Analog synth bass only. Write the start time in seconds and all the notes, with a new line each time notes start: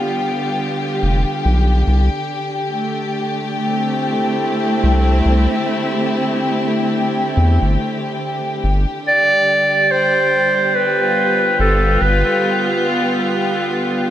1.03 F1
1.45 B1
1.87 C2
4.84 C2
5.26 C2
7.37 E2
7.62 G1
8.64 G1
11.59 G1
12.02 G1